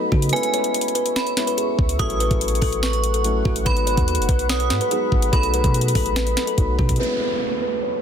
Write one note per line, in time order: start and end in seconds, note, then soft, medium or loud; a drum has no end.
0.00 0.35 F#3 medium
0.00 0.34 A3 medium
0.00 0.32 B3 medium
0.00 0.34 D#4 medium
0.00 0.10 A4 medium
0.00 0.31 A4 medium
0.00 0.31 D#5 medium
0.00 0.29 B5 loud
0.12 0.32 C#3 loud
0.12 0.31 F#4 medium
0.12 kick loud
0.22 closed hi-hat medium
0.29 1.34 G#3 medium
0.29 1.35 B3 medium
0.29 1.35 C#4 medium
0.29 1.98 B4 medium
0.29 0.52 B4 loud
0.29 1.98 E5 medium
0.29 1.12 G#5 loud
0.29 3.63 C#6 medium
0.29 closed hi-hat medium
0.34 1.36 E4 medium
0.34 closed hi-hat soft
0.43 closed hi-hat medium
0.54 0.73 C#5 medium
0.54 closed hi-hat medium
0.64 closed hi-hat medium
0.74 closed hi-hat medium
0.81 closed hi-hat medium
0.88 closed hi-hat soft
0.95 1.15 B4 medium
0.95 closed hi-hat medium
1.06 closed hi-hat medium
1.16 1.45 C#5 medium
1.16 1.95 B5 medium
1.16 snare loud
1.16 closed hi-hat medium
1.27 closed hi-hat medium
1.37 1.99 G#3 soft
1.37 2.00 B3 soft
1.37 1.99 C#4 medium
1.37 2.00 E4 medium
1.37 snare medium
1.37 closed hi-hat medium
1.47 1.57 B4 medium
1.47 closed hi-hat medium
1.58 1.77 G#4 medium
1.58 closed hi-hat medium
1.79 1.99 C#2 loud
1.79 kick loud
1.89 closed hi-hat medium
1.99 2.29 A1 loud
1.99 3.22 F#3 medium
1.99 3.22 A3 medium
1.99 3.22 C#4 medium
1.99 3.23 E4 medium
1.99 2.19 A4 loud
1.99 3.65 A4 medium
1.99 5.30 F#5 medium
1.99 2.79 D#6 loud
1.99 kick loud
1.99 closed hi-hat medium
2.10 closed hi-hat medium
2.20 2.40 B4 medium
2.20 closed hi-hat medium
2.31 2.61 A1 loud
2.31 kick loud
2.31 closed hi-hat medium
2.41 closed hi-hat medium
2.48 closed hi-hat medium
2.55 closed hi-hat soft
2.62 3.42 A1 loud
2.62 2.81 A4 medium
2.62 kick loud
2.62 open hi-hat medium
2.72 closed hi-hat medium
2.83 3.12 B4 medium
2.83 3.62 C#6 medium
2.83 snare loud
2.83 closed hi-hat medium
2.93 closed hi-hat medium
3.04 closed hi-hat medium
3.14 3.44 A4 medium
3.14 closed hi-hat medium
3.24 3.64 F#3 medium
3.24 3.66 A3 soft
3.24 3.66 C#4 soft
3.24 3.67 E4 medium
3.24 closed hi-hat medium
3.45 3.65 A1 loud
3.45 3.65 F#4 medium
3.45 kick loud
3.56 closed hi-hat medium
3.65 3.96 G#1 loud
3.65 4.88 F#3 medium
3.65 4.88 G#3 medium
3.65 4.89 B3 medium
3.65 4.89 D#4 medium
3.65 5.31 G#4 medium
3.65 3.85 B4 loud
3.65 5.31 B5 medium
3.65 4.46 B5 loud
3.65 kick loud
3.65 closed hi-hat medium
3.77 closed hi-hat medium
3.87 4.06 C#5 medium
3.87 closed hi-hat medium
3.97 4.20 D#2 loud
3.97 kick loud
3.97 closed hi-hat medium
4.08 closed hi-hat medium
4.15 4.28 F#1 loud
4.15 closed hi-hat medium
4.22 closed hi-hat medium
4.29 4.72 B1 loud
4.29 4.48 B4 medium
4.29 kick loud
4.29 closed hi-hat medium
4.39 closed hi-hat medium
4.49 4.79 C#5 medium
4.49 5.29 D#6 medium
4.49 snare loud
4.49 closed hi-hat medium
4.60 closed hi-hat medium
4.70 4.80 G#2 loud
4.70 snare medium
4.70 closed hi-hat medium
4.81 4.91 B4 medium
4.81 closed hi-hat medium
4.91 5.30 F#3 soft
4.91 5.33 G#3 medium
4.91 5.32 B3 medium
4.91 5.32 D#4 medium
4.91 5.11 G#4 medium
4.91 closed hi-hat medium
5.12 5.32 G#1 loud
5.12 kick loud
5.22 closed hi-hat medium
5.31 5.63 B1 loud
5.31 6.55 F#3 medium
5.31 6.55 A3 medium
5.31 6.55 B3 medium
5.31 6.56 D#4 medium
5.31 5.52 A4 loud
5.31 6.98 A4 medium
5.31 6.98 D#5 medium
5.31 6.98 B5 medium
5.31 6.96 B5 loud
5.31 kick loud
5.31 closed hi-hat medium
5.43 closed hi-hat medium
5.54 5.73 B4 medium
5.54 closed hi-hat medium
5.64 5.94 B2 loud
5.64 kick loud
5.64 closed hi-hat medium
5.74 closed hi-hat medium
5.81 closed hi-hat medium
5.88 closed hi-hat medium
5.95 6.35 A1 loud
5.95 6.15 A4 medium
5.95 kick loud
5.95 open hi-hat medium
6.06 closed hi-hat medium
6.16 6.45 B4 medium
6.16 snare loud
6.16 closed hi-hat medium
6.27 closed hi-hat medium
6.37 snare medium
6.37 closed hi-hat medium
6.47 6.77 A4 medium
6.47 closed hi-hat medium
6.57 6.78 B1 loud
6.57 6.99 F#3 medium
6.57 6.99 A3 soft
6.57 6.97 B3 soft
6.57 7.00 D#4 medium
6.57 kick medium
6.57 closed hi-hat medium
6.79 6.99 B2 loud
6.79 6.98 F#4 medium
6.79 kick loud
6.89 kick loud
6.89 closed hi-hat medium
6.96 8.02 G#3 medium
6.96 8.02 B3 medium
6.96 8.02 C#4 medium
6.96 7.19 B4 loud
6.96 closed hi-hat medium
6.96 downlifter medium
7.00 8.02 E4 medium
7.00 closed hi-hat soft
7.21 7.40 C#5 medium
7.62 7.81 B4 medium
7.83 8.02 C#5 medium